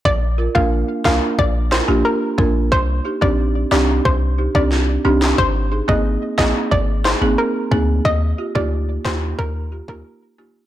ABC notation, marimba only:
X:1
M:4/4
L:1/16
Q:1/4=90
K:Bbmix
V:1 name="Marimba"
z2 [FB] [B,DFB] z2 [B,DFB] z3 [FB] [B,DFG] z2 [B,DFB] z | z2 [EG] [CDEG] z2 [CDEG] z3 [EG] [CDEG] z2 [CDEG] z | z2 [EA] [B,CEA] z2 [B,CEA] z3 [EA] [B,CEA] z2 [B,CEA] z | z2 [FG] [B,EFG] z2 [B,EFG] z3 [FG] [B,EFG] z2 [B,EFG] z |]